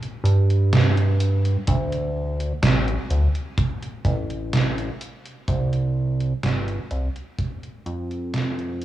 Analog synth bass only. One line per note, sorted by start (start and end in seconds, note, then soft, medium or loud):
0.24 1.57 G2 loud
1.68 2.53 D2 loud
2.62 2.98 A1 medium
3.10 3.28 D2 medium
4.05 4.90 A1 medium
5.48 6.33 C2 loud
6.44 6.79 G1 loud
6.91 7.09 C2 medium
7.86 8.85 F2 loud